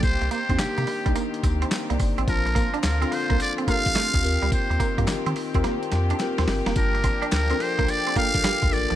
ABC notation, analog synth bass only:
X:1
M:4/4
L:1/16
Q:"Swing 16ths" 1/4=107
K:Gm
V:1 name="Analog synth bass" clef=bass
C,, C,, z E,, C, C, z C,, z2 D,,2 z C,, G,,, A,,, | B,,,3 z D,,2 z C,, z2 B,,, B,,, z D,, E,, D,, | z E,, z G,, E, E, z E,, z2 F,,2 z E,, G,,, F,,, | G,,,3 z D,,2 z C,, z2 B,,, B,,, z D,, A,,, B,,, |]